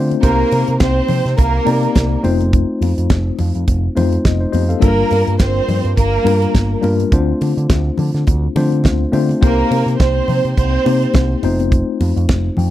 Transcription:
Already playing: D3 A3 C4 D4 F4 C5
0.11 closed hi-hat, high conga
0.22 C2 A#3 C4 D#4 G4 A#4 C5, kick, closed hi-hat
0.52 C3, open hi-hat, muted conga
0.68 C3, closed hi-hat
0.80 C2 C4 C5, kick, snare, closed hi-hat, high conga
1.08 C3, open hi-hat, low conga
1.25 C3, snare, closed hi-hat
1.37 C2 A#3 A#4, kick, closed hi-hat, muted conga
1.65 C3 A#3 C4 D#4 G4 D5, open hi-hat, muted conga
1.83 closed hi-hat
1.95 C2, kick, snare, closed hi-hat, high conga
2.23 F1 A3 C4 D#4 F4 C5, open hi-hat, high conga
2.40 closed hi-hat, high conga
2.53 kick, closed hi-hat
2.81 F2, open hi-hat, muted conga
2.98 F2, closed hi-hat
3.10 F1, kick, snare, closed hi-hat, high conga
3.39 F2, open hi-hat, low conga
3.55 F2, closed hi-hat
3.68 F1, kick, closed hi-hat, muted conga
3.96 F2 A3 C4 D#4 F4 C5, open hi-hat, muted conga, low conga
4.13 closed hi-hat
4.25 F1 D#5, kick, snare, closed hi-hat, high conga
4.40 D#4 C5
4.52 F2 G4 C5 D#5, open hi-hat, high conga
4.69 A4 F5, closed hi-hat, high conga
4.80 G1 G3 A#3 D4 F4 A4 A#4, kick, closed hi-hat
4.88 A#4
5.11 G2, open hi-hat, muted conga
5.27 G2, closed hi-hat
5.39 G1 C4 C5, kick, snare, closed hi-hat, high conga
5.68 G2, open hi-hat, low conga
5.84 G2, closed hi-hat
5.96 G1 A#3 A#4, kick, closed hi-hat, muted conga
6.24 G2 G3 A#3 D4 F4 A#4, open hi-hat, muted conga
6.42 closed hi-hat
6.55 G1, kick, snare, closed hi-hat, high conga
6.81 G2 G3 A#3 D4 F4 A#4, open hi-hat, high conga
7.00 closed hi-hat, high conga
7.11 D2 A3 C4 D4 F4 C5, kick, closed hi-hat
7.41 D3, open hi-hat, muted conga
7.57 D3, closed hi-hat
7.70 D2, kick, snare, closed hi-hat, high conga
7.97 D3, open hi-hat, low conga
8.14 D3, snare, closed hi-hat
8.27 D2, kick, closed hi-hat, muted conga
8.56 D3 A3 C4 D4 F4 C5, open hi-hat, muted conga, low conga
8.72 closed hi-hat
8.84 D2, kick, snare, closed hi-hat, high conga
9.12 D3 A3 C4 D4 F4 C5, open hi-hat, high conga
9.29 closed hi-hat, high conga
9.41 C2 A#3 C4 D#4 G4 A#4 C5, kick, closed hi-hat
9.71 C3, open hi-hat, muted conga
9.86 C3, closed hi-hat
9.99 C2 C4 C5, kick, snare, closed hi-hat, high conga
10.28 C3, open hi-hat, low conga
10.45 C3, closed hi-hat
10.56 C2 C4 C5, kick, closed hi-hat
10.85 C3 A#3 C4 D#4 G4 C5, open hi-hat, muted conga
11.02 closed hi-hat
11.14 C2, kick, snare, closed hi-hat, high conga
11.43 F1 A3 C4 D#4 F4 C5, open hi-hat, high conga
11.59 closed hi-hat, high conga
11.72 kick, closed hi-hat
12.01 F2, open hi-hat, muted conga
12.16 F2, closed hi-hat
12.29 F1, kick, snare, closed hi-hat, high conga
12.57 F2 G5, open hi-hat, low conga

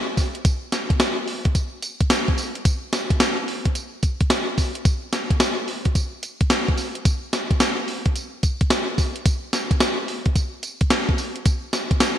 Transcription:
0.17 kick, open hi-hat, tambourine
0.35 closed hi-hat
0.45 kick, closed hi-hat, tambourine
0.72 snare, closed hi-hat, tambourine
0.90 kick, closed hi-hat
1.00 snare, closed hi-hat, tambourine
1.28 open hi-hat
1.45 kick, closed hi-hat
1.55 kick, closed hi-hat, tambourine
1.82 closed hi-hat, tambourine
2.01 kick, closed hi-hat
2.10 snare, closed hi-hat, tambourine
2.28 kick
2.38 open hi-hat, tambourine
2.55 closed hi-hat
2.65 kick, closed hi-hat, tambourine
2.93 snare, closed hi-hat, tambourine
3.10 kick, closed hi-hat
3.20 snare, closed hi-hat, tambourine
3.48 open hi-hat
3.65 kick, closed hi-hat
3.75 closed hi-hat, tambourine
4.03 kick, closed hi-hat, tambourine
4.21 kick, closed hi-hat
4.30 snare, closed hi-hat, tambourine
4.58 kick, open hi-hat, tambourine
4.75 closed hi-hat
4.85 kick, closed hi-hat, tambourine
5.13 snare, closed hi-hat, tambourine
5.30 kick, closed hi-hat
5.40 snare, closed hi-hat, tambourine
5.68 open hi-hat
5.85 kick, closed hi-hat
5.95 kick, closed hi-hat, tambourine
6.23 closed hi-hat, tambourine
6.41 kick, closed hi-hat
6.50 snare, closed hi-hat, tambourine
6.68 kick
6.78 open hi-hat, tambourine
6.95 closed hi-hat
7.05 kick, closed hi-hat, tambourine
7.33 snare, closed hi-hat, tambourine
7.51 kick, closed hi-hat
7.60 snare, closed hi-hat, tambourine
7.88 open hi-hat
8.06 kick, closed hi-hat
8.16 closed hi-hat, tambourine
8.43 kick, closed hi-hat, tambourine
8.61 kick, closed hi-hat
8.70 snare, closed hi-hat, tambourine
8.98 kick, open hi-hat, tambourine
9.16 closed hi-hat
9.26 kick, closed hi-hat, tambourine
9.53 snare, closed hi-hat, tambourine
9.71 kick, closed hi-hat
9.80 snare, closed hi-hat, tambourine
10.08 open hi-hat
10.26 kick, closed hi-hat
10.36 kick, closed hi-hat, tambourine
10.63 closed hi-hat, tambourine
10.81 kick, closed hi-hat
10.90 snare, closed hi-hat, tambourine
11.09 kick
11.18 open hi-hat, tambourine
11.36 closed hi-hat
11.46 kick, closed hi-hat, tambourine
11.73 snare, closed hi-hat, tambourine
11.91 kick, closed hi-hat
12.00 snare, closed hi-hat, tambourine

